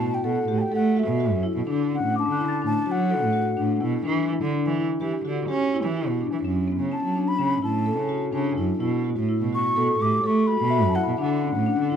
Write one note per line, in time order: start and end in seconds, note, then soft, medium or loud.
0.00 0.16 F#4 medium
0.00 0.16 A5 medium
0.00 0.59 A5 medium
0.14 0.26 G5 medium
0.24 0.43 B2 medium
0.24 0.40 A4 medium
0.24 0.60 F#5 medium
0.48 0.66 A2 medium
0.48 0.64 G4 medium
0.58 0.73 G5 medium
0.58 0.62 A5 soft
0.72 0.99 A3 medium
0.72 0.87 A4 medium
0.72 1.00 F#5 medium
0.97 1.12 F#4 medium
0.97 1.45 E5 medium
1.08 1.33 B2 medium
1.20 1.35 F#4 medium
1.32 1.50 F#2 medium
1.43 1.59 E4 medium
1.56 1.65 B2 medium
1.67 1.95 D3 medium
1.67 1.82 D4 medium
1.91 2.06 C#4 medium
1.91 2.15 F#5 medium
2.04 2.22 A2 medium
2.15 2.30 D4 medium
2.15 2.99 D6 medium
2.19 2.62 A5 loud
2.28 2.46 D3 medium
2.28 3.13 F#6 soft
2.38 2.54 E4 medium
2.48 3.27 A6 medium
2.62 2.82 A2 medium
2.62 2.77 D4 medium
2.66 2.93 A5 medium
2.86 3.25 F#3 medium
2.86 3.01 F#4 medium
2.91 3.84 F#5 medium
3.10 3.25 A4 medium
3.23 3.50 A2 medium
3.33 3.49 F#4 medium
3.57 3.77 A2 medium
3.57 3.73 D4 medium
3.81 4.01 B2 medium
3.81 3.96 E4 medium
4.05 4.33 E3 medium
4.05 4.20 D4 medium
4.29 4.45 E4 medium
4.41 4.51 D3 medium
4.53 4.68 D4 medium
4.66 4.84 E3 medium
4.77 4.92 E4 medium
5.01 5.19 E3 medium
5.01 5.16 G4 medium
5.25 5.43 D3 medium
5.25 5.40 F#4 medium
5.48 5.76 C#4 loud
5.48 5.64 G4 medium
5.73 5.88 E4 medium
5.85 6.09 E3 medium
5.97 6.12 E4 medium
6.08 6.26 B2 medium
6.21 6.36 D4 medium
6.32 6.41 E3 medium
6.44 6.71 F#2 medium
6.44 6.60 C#4 medium
6.68 6.83 B3 medium
6.80 6.98 C#3 medium
6.91 7.07 C#4 medium
6.91 7.30 A5 medium
7.03 7.21 F#3 medium
7.16 7.31 D4 medium
7.28 7.63 B5 loud
7.39 7.57 C#3 medium
7.39 7.54 C#4 medium
7.63 8.00 A2 medium
7.63 7.78 E4 medium
7.63 8.31 A5 medium
7.86 8.01 A4 medium
7.98 8.26 C#3 medium
8.09 8.25 F#4 medium
8.33 8.52 C#3 medium
8.33 8.48 D4 medium
8.33 9.02 A5 soft
8.57 8.76 F#2 medium
8.57 8.72 E4 medium
8.80 9.09 B2 medium
8.80 8.96 E4 medium
9.04 9.20 F#4 medium
9.17 9.26 A2 medium
9.29 9.44 E4 medium
9.41 9.59 B2 medium
9.53 9.68 F#4 medium
9.53 10.03 C#6 medium
9.76 9.95 B2 medium
9.76 9.92 A4 medium
9.99 10.18 A2 medium
9.99 10.16 G4 medium
9.99 10.28 D6 medium
10.24 10.52 A3 medium
10.24 10.39 A4 medium
10.24 10.48 C#6 medium
10.47 10.63 F#4 medium
10.47 10.97 B5 loud
10.61 10.86 B2 medium
10.70 10.87 F#4 medium
10.70 11.39 E5 medium
10.84 11.02 F#2 medium
10.89 11.54 A5 soft
10.95 11.10 E4 medium
10.95 11.19 F#5 medium
11.03 11.67 B5 soft
11.08 11.17 B2 medium
11.18 11.47 D3 medium
11.18 11.34 D4 medium
11.18 11.96 F#5 medium
11.42 11.58 C#4 medium
11.56 11.74 A2 medium
11.66 11.82 D4 medium
11.79 11.96 D3 medium
11.90 11.96 E4 medium